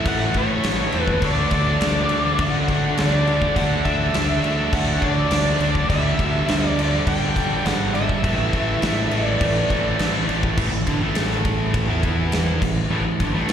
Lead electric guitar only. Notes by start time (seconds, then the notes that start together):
0.08 F#5
0.37 C#5
1.01 B4
1.25 D5
2.42 F#5
2.99 D5
3.56 F#5
3.85 E5
4.45 E5
4.75 F#5
5.03 D5
5.90 E5
6.67 D5
7.08 G5
7.66 F#5
7.95 E5
9.25 D5